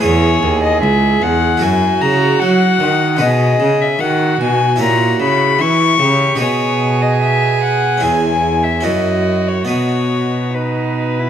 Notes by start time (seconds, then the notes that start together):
0.00 E2 E4 G#4 B4 C#5
0.42 D#2
0.63 D#5
0.81 C#2 E5
1.22 E2 F#5
1.57 F#2 E4 F#4 A#4
1.62 F#2 G#5
2.01 C#3 A#5
2.39 F#3 F#5
2.80 D#3
3.16 B2 D#4 F#4 B4 D#5
3.21 B2 G#4
3.60 C#3
3.81 E5
3.99 D#3 F#4 F#5
4.40 B2 G#5
4.76 E4 G4 C#5
4.80 A#2 F#4 A#5
5.20 C#3 B5
5.59 E3 E4 C#6
5.99 C#3 G4
6.35 D#4 F#4 B4
6.40 B2 G#4 C#5
7.02 D#5
7.21 E5
7.63 F#5
7.97 C#4 E4 G#4
8.02 E2 G#5
8.64 E5
8.81 F#2 C#4 E4 F#4 A#4 D#5
8.85 F#2
9.47 C#5
9.65 B3 D#4 B4 C#5
9.69 B2 F#4
10.54 D#4 B4
11.20 E4